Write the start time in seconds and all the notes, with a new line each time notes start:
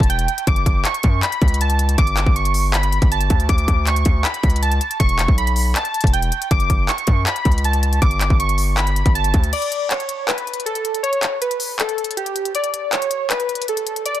0.00 E1, kick, closed hi-hat
0.09 G5, closed hi-hat
0.19 closed hi-hat
0.28 closed hi-hat
0.38 closed hi-hat
0.47 F#1 D6, kick, closed hi-hat
0.56 closed hi-hat
0.66 F#1, kick, closed hi-hat
0.85 C#6, clap, closed hi-hat
0.94 closed hi-hat
1.03 F#2, kick, closed hi-hat
1.23 B5, clap, closed hi-hat
1.32 closed hi-hat
1.42 C#2, kick, closed hi-hat
1.48 closed hi-hat
1.54 closed hi-hat
1.61 A5, closed hi-hat
1.70 closed hi-hat
1.79 closed hi-hat
1.89 closed hi-hat
1.98 G1 D6, kick, closed hi-hat
2.07 closed hi-hat
2.17 clap, closed hi-hat
2.26 G1, kick
2.36 C#6, closed hi-hat
2.45 closed hi-hat
2.54 open hi-hat
2.73 B5, clap, closed hi-hat
2.83 closed hi-hat
2.92 closed hi-hat
3.02 G1, kick, closed hi-hat
3.12 A5, closed hi-hat
3.21 closed hi-hat
3.30 D2, kick, closed hi-hat
3.40 closed hi-hat
3.49 D2 D6, kick, closed hi-hat
3.58 closed hi-hat
3.68 D2, kick, closed hi-hat
3.87 C#6, clap, closed hi-hat
3.96 closed hi-hat
4.05 D2, kick, closed hi-hat
4.24 B5, clap, closed hi-hat
4.34 closed hi-hat
4.43 C#2, kick, closed hi-hat
4.50 closed hi-hat
4.56 closed hi-hat
4.62 A5, closed hi-hat
4.72 closed hi-hat
4.81 closed hi-hat
4.91 closed hi-hat
5.00 E1 C#6, kick, closed hi-hat
5.09 closed hi-hat
5.19 clap, closed hi-hat
5.28 B1, kick
5.38 B5, closed hi-hat
5.47 closed hi-hat
5.56 open hi-hat
5.75 A5, clap, closed hi-hat
5.85 closed hi-hat
5.94 closed hi-hat
6.01 E1, kick, closed hi-hat
6.07 closed hi-hat
6.13 G5, closed hi-hat
6.22 closed hi-hat
6.32 closed hi-hat
6.42 closed hi-hat
6.51 F#1 D6, kick, closed hi-hat
6.60 closed hi-hat
6.70 F#1, kick, closed hi-hat
6.89 C#6, clap, closed hi-hat
6.98 closed hi-hat
7.07 F#2, kick, closed hi-hat
7.26 B5, clap, closed hi-hat
7.36 closed hi-hat
7.45 C#2, kick, closed hi-hat
7.52 closed hi-hat
7.58 closed hi-hat
7.64 A5, closed hi-hat
7.73 closed hi-hat
7.83 closed hi-hat
7.93 closed hi-hat
8.02 G1 D6, kick, closed hi-hat
8.11 closed hi-hat
8.21 clap, closed hi-hat
8.30 G1, kick
8.40 C#6, closed hi-hat
8.49 closed hi-hat
8.58 open hi-hat
8.77 B5, clap, closed hi-hat
8.87 closed hi-hat
8.96 closed hi-hat
9.06 G1, kick, closed hi-hat
9.15 A5, closed hi-hat
9.24 closed hi-hat
9.34 D2, kick, closed hi-hat
9.44 closed hi-hat
9.53 D5, closed hi-hat, crash
9.62 closed hi-hat
9.72 closed hi-hat
9.91 C#5, clap, closed hi-hat
10.00 closed hi-hat
10.09 closed hi-hat
10.28 B4, clap, closed hi-hat
10.38 closed hi-hat
10.47 closed hi-hat
10.54 closed hi-hat
10.60 closed hi-hat
10.66 A4, closed hi-hat
10.75 closed hi-hat
10.85 closed hi-hat
10.95 closed hi-hat
11.03 C#5, closed hi-hat
11.13 closed hi-hat
11.23 clap, closed hi-hat
11.41 B4, closed hi-hat
11.51 closed hi-hat
11.60 open hi-hat
11.79 A4, clap, closed hi-hat
11.89 closed hi-hat
11.98 closed hi-hat
12.04 closed hi-hat
12.11 closed hi-hat
12.17 G4, closed hi-hat
12.26 closed hi-hat
12.36 closed hi-hat
12.45 closed hi-hat
12.55 D5, closed hi-hat
12.64 closed hi-hat
12.74 closed hi-hat
12.92 C#5, clap, closed hi-hat
13.02 closed hi-hat
13.11 closed hi-hat
13.30 B4, clap, closed hi-hat
13.40 closed hi-hat
13.49 closed hi-hat
13.55 closed hi-hat
13.62 closed hi-hat
13.68 A4, closed hi-hat
13.77 closed hi-hat
13.87 closed hi-hat
13.96 closed hi-hat
14.06 D5, closed hi-hat
14.15 closed hi-hat